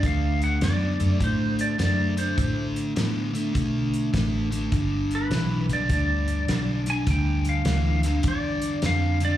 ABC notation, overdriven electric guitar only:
X:1
M:4/4
L:1/8
Q:"Swing" 1/4=102
K:G
V:1 name="Overdriven electric guitar" clef=bass
[D,A,]2 [D,B,] [D,A,] [D,A,]2 [D,A,] [D,A,] | [D,A,]2 [D,B,] [D,A,] [D,A,]2 [D,A,] [D,A,] | [G,,D,]2 [G,,E,] [G,,D,] [G,,D,]2 [G,,D,] [G,,D,] | [G,,D,]2 [G,,E,] [G,,D,] [G,,D,]2 [G,,D,] [G,,D,] |]